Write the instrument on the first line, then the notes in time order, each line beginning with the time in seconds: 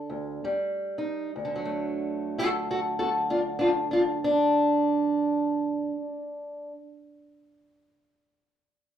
steel-string acoustic guitar
Already playing: D3 D4 A4
0.10 D2
0.44 D#2 G3
0.98 D#4
1.36 D2
1.45 D3
1.56 F#3
1.65 A3
2.38 F#4 A4
2.71 F#4 A4
2.99 F#4 A4
3.30 D4 F4
3.59 D4 F4
3.91 D4 F4
4.24 D4